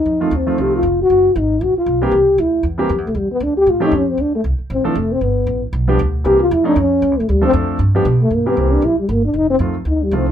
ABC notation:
X:1
M:4/4
L:1/8
Q:"Swing" 1/4=233
K:Gdor
V:1 name="Trombone"
_E2 C2 G F2 ^F- | ^F2 ^D2 F =F2 G- | G2 E2 z3 A, | G, =B, D G ^E _E ^C ^B, |
D A, z2 C E, A, C | =B,3 z4 z | G F E D ^C3 A, | G, C z4 z A, |
B, =B, C D E G, _B, D | _E C z2 E G, C z |]
V:2 name="Grand piano"
z [_E,F,A,CF] z [E,F,A,CF]3 z2 | z6 z [E,G,B,CG] | z4 z [E,G,B,CG] z2 | z4 z [^E,A,^B,^CG] z2 |
z4 z [F,A,CDA] z2 | z4 z [F,G,=B,DG] z2 | [E,G,B,CG] z2 [F,A,C_D_E] z4 | z [F,A,CDA]3 z [F,G,=B,DG] z2 |
z [E,G,B,CG]3 z4 | z2 [_E,F,A,CF] z3 [E,F,A,CF] z |]
V:3 name="Upright bass" clef=bass
F,,2 _E,,2 C,,2 F,,,2 | ^F,,,2 _A,,,2 =A,,, z =B,,,2 | C,,2 D,,2 E,,2 (3F,, E,, C,, | E,,2 D,,2 A,,2 ^E,,2 |
D,,2 C,, z A,,, z F,,,2 | G,,,2 A,,,2 =B,,,2 D,,2 | C,,2 E,,2 ^E,,2 (3_E,, ^C,, A,,, | D,,2 F,,2 G,,2 =B,,2 |
G,,2 C,,2 B,,, z G,,,2 | F,,,2 F,,2 D,,2 C,,2 |]